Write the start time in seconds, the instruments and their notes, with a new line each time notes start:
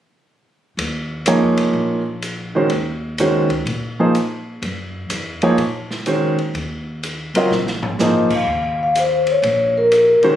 0.77 upright bass D#2, ride
1.26 grand piano F3 A#3 D#4 G#4 C#5, hi-hat pedal, ride
1.42 upright bass F2
1.57 upright bass C#2, ride
1.73 upright bass A#1
2.22 hi-hat pedal, ride
2.55 grand piano D#3 G#3 C#4 F#4 C5
2.70 upright bass D#2, ride
3.18 grand piano D#3 G#3 C#4 F#4 C5, hi-hat pedal, ride
3.49 upright bass C#2, ride
3.66 upright bass A#2, ride
4.00 grand piano F3 A#3 D#4 G#4 C5
4.15 hi-hat pedal, ride
4.62 upright bass F#2, ride
5.10 upright bass E2, hi-hat pedal, ride
5.42 grand piano F3 A#3 D#4 G#4 C#5, ride
5.57 upright bass A#2, ride
5.91 snare
6.06 grand piano D#3 G#3 C#4 F#4 C5, hi-hat pedal, ride
6.38 ride
6.54 upright bass D#2, ride
7.03 hi-hat pedal, ride
7.34 upright bass C#2, grand piano F#3 C4 F4 A#4 D#5, ride
7.50 upright bass A#1, snare
7.67 snare
7.83 floor tom
7.99 grand piano F3 A#3 D#4 G#4 C5, vibraphone D#5, snare, hi-hat pedal
8.30 kick, crash
8.35 vibraphone F5
8.46 upright bass D#2
8.83 vibraphone F5
8.95 vibraphone C5, hi-hat pedal, ride
9.27 ride
9.31 vibraphone C#5
9.42 upright bass A#1, ride
9.77 vibraphone A#4
9.92 hi-hat pedal, ride
10.22 grand piano D#3 G#3 C#4 F#4 C5, vibraphone C#5, muted upright bass stroke, ride